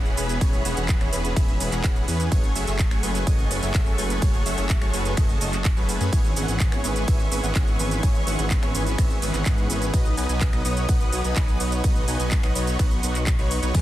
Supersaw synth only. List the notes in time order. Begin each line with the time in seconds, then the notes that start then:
Already playing: E3 B3 C#4 G#4 F#5
0.17 E3 B3 C#4 G#4 B4
0.41 E3 B3 C#4 G#4 C#5
0.65 E3 B3 C#4 G#4 F#5
0.77 E3 B3 C#4 G#4 F#5
1.01 E3 B3 C#4 G#4 C#5
1.13 E3 B3 C#4 G#4 B4
1.37 E3 B3 C#4 G#4 E5
1.60 E3 B3 C#4 G#4 B4
1.72 E3 B3 C#4 G#4 F#5
1.84 E3 B3
2.08 E3 B3 C#4 G#4 B4
2.32 F#3 A3 C#4 G#4 C#5
2.55 F#3 A3 C#4 G#4 E5
2.67 F#3 A3 C#4 G#4 E5
2.91 F#3 A3 C#4 G#4 C#5
3.03 F#3 A3 C#4 G#4 B4
3.27 F#3 A3 C#4 G#4 D#5
3.51 F#3 A3 C#4 G#4 B4
3.63 F#3 A3 C#4 G#4 E5
3.98 F#3 A3 C#4 G#4 B4
4.22 F#3 A3 C#4 G#4 C#5
4.46 F#3 A3 C#4 G#4 E5
4.58 F#3 A3 C#4 G#4 E5
4.82 F#3 A3 C#4 G#4 C#5
4.94 F#3 A3 C#4 G#4 B4
5.17 F#3 A3 C#4 G#4 D#5
5.41 F#3 A3 C#4 G#4 D#5
5.77 F#3 A3 C#4 G#4 B4
6.01 F#3 A3 C#4 G#4 B4
6.13 B3 C#4 G#4 C#5
6.36 E3 B3 C#4 G#4 F#5
6.48 E3 B3 C#4 G#4 F#5
6.72 E3 B3 C#4 G#4 C#5
6.84 E3 B3 C#4 G#4 B4
7.08 E3 B3 C#4 G#4 E5
7.32 E3 B3 C#4 G#4 B4
7.44 E3 B3 C#4 G#4 F#5
7.56 E3 C#4 G#4
7.79 E3 B3 C#4 G#4 B4
8.03 E3 B3 C#4 G#4 C#5
8.27 E3 B3 C#4 G#4 F#5
8.39 E3 B3 C#4 G#4 F#5
8.63 E3 B3 C#4 G#4 C#5
8.75 E3 B3 C#4 G#4 B4
8.98 E3 B3 C#4 G#4 E5
9.22 E3 B3 C#4 G#4 B4
9.34 E3 B3 C#4 G#4 F#5
9.46 E3 B3 C#4 G#4
9.70 E3 B3 C#4 G#4 B4
9.94 F#3 B3 D#4 B4 D#5
10.17 F#3 B3 D#4 B4 G#5
10.29 F#3 B3 D#4 B4 G#5
10.53 F#3 B3 D#4 B4 D#5
10.65 F#3 B3 D#4 B4 C#5
10.89 F#3 B3 D#4 B4 F#5
11.13 F#3 B3 D#4 B4 C#5
11.25 F#3 B3 D#4 B4 G#5
11.36 F#3 B3 D#4 B4 G#5
11.60 F#3 B3 D#4 B4 C#5
11.84 B3 D#4 B4 D#5
12.08 F#3 B3 D#4 B4 G#5
12.20 F#3 B3 D#4 B4 G#5
12.44 F#3 B3 D#4 B4 D#5
12.56 F#3 B3 D#4 B4 C#5
12.79 F#3 B3 D#4 B4 F#5
13.03 F#3 B3 D#4 B4 F#5
13.39 F#3 B3 D#4 B4 C#5
13.63 F#3 B3 D#4 B4 C#5
13.75 E3 B3 C#4 G#4